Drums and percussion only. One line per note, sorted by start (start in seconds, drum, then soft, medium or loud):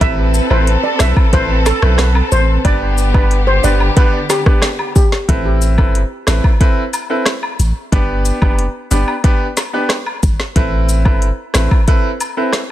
0.01 kick loud
0.01 closed hi-hat medium
0.01 high woodblock medium
0.34 cabasa medium
0.50 high woodblock medium
0.67 closed hi-hat medium
0.99 cross-stick medium
0.99 snare loud
0.99 cabasa medium
1.16 kick loud
1.16 high woodblock medium
1.33 kick loud
1.33 closed hi-hat medium
1.66 snare medium
1.66 cabasa medium
1.66 high woodblock medium
1.82 cross-stick loud
1.98 cross-stick loud
1.98 snare loud
1.98 closed hi-hat medium
2.15 high woodblock medium
2.32 cabasa medium
2.65 kick loud
2.65 closed hi-hat medium
2.65 high woodblock medium
2.98 cabasa medium
3.14 kick loud
3.14 high woodblock medium
3.31 closed hi-hat medium
3.64 cabasa medium
3.80 high woodblock medium
3.97 kick loud
3.97 closed hi-hat medium
4.30 snare medium
4.30 cabasa medium
4.30 high woodblock medium
4.46 kick loud
4.46 cross-stick loud
4.62 cross-stick medium
4.62 snare loud
4.62 closed hi-hat medium
4.79 high woodblock medium
4.96 kick loud
4.96 cabasa medium
5.12 snare medium
5.29 kick loud
5.29 closed hi-hat medium
5.62 closed hi-hat soft
5.62 cabasa medium
5.78 kick medium
5.78 high woodblock medium
5.95 closed hi-hat medium
6.27 cross-stick medium
6.27 snare loud
6.27 closed hi-hat medium
6.27 cabasa medium
6.44 kick medium
6.44 high woodblock medium
6.61 kick medium
6.61 closed hi-hat medium
6.93 closed hi-hat soft
6.93 cabasa medium
6.93 high woodblock medium
7.26 cross-stick loud
7.26 snare loud
7.26 closed hi-hat medium
7.43 high woodblock medium
7.60 closed hi-hat medium
7.60 cabasa medium
7.92 kick loud
7.92 closed hi-hat medium
8.25 closed hi-hat soft
8.25 cabasa medium
8.42 kick loud
8.42 high woodblock medium
8.59 closed hi-hat medium
8.91 closed hi-hat medium
8.91 cabasa medium
9.08 high woodblock medium
9.24 kick loud
9.24 closed hi-hat medium
9.57 snare medium
9.57 closed hi-hat soft
9.57 cabasa medium
9.57 high woodblock medium
9.89 cross-stick medium
9.89 snare loud
9.89 closed hi-hat medium
10.06 high woodblock medium
10.23 kick loud
10.23 closed hi-hat medium
10.23 cabasa medium
10.40 snare medium
10.56 kick loud
10.56 closed hi-hat medium
10.89 closed hi-hat soft
10.89 cabasa medium
11.05 kick loud
11.05 high woodblock medium
11.22 closed hi-hat medium
11.54 cross-stick medium
11.54 snare loud
11.54 closed hi-hat medium
11.54 cabasa medium
11.71 kick medium
11.71 high woodblock medium
11.88 kick loud
11.88 closed hi-hat medium
12.20 closed hi-hat soft
12.20 cabasa medium
12.20 high woodblock medium
12.53 cross-stick medium
12.53 snare loud
12.53 closed hi-hat medium